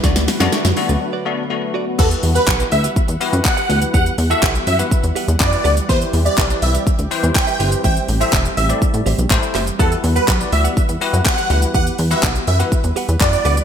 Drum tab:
CC |----------------|x---------------|----------------|----------------|
HH |x-o-x-o---------|-xox-xox-xox-xox|-xox-xox-xox-xox|-xox-xox-xox-xox|
SH |xxxxxxxx--------|xxxxxxxxxxxxxxxx|xxxxxxxxxxxxxxxx|xxxxxxxxxxxxxxxx|
CP |----------------|----x-------x---|----x-------x---|----x-------x---|
SD |oooooo----------|----------------|----------------|----------------|
BD |o---------------|o---o---o---o---|o---o---o---o---|o---o---o---o---|

CC |----------------|----------------|----------------|
HH |-xox-xox-xox-xox|-xox-xox-xox-xox|-xox-xox-xox-xox|
SH |xxxxxxxxxxxxxxxx|xxxxxxxxxxxxxxxx|xxxxxxxxxxxxxxxx|
CP |----x-------x-x-|----x-------x---|----x-------x---|
SD |----------------|----------------|----------------|
BD |o---o---o---o---|o---o---o---o---|o---o---o---o---|